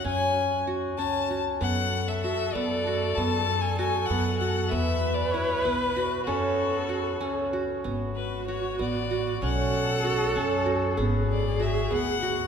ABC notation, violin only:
X:1
M:5/8
L:1/16
Q:1/4=96
K:Bdor
V:1 name="Violin"
g4 z2 a3 z | f3 e e2 d4 | a3 g g2 f2 f2 | e3 d c2 B4 |
F8 z2 | z2 B2 c2 d4 | f8 z2 | z2 d2 e2 f4 |]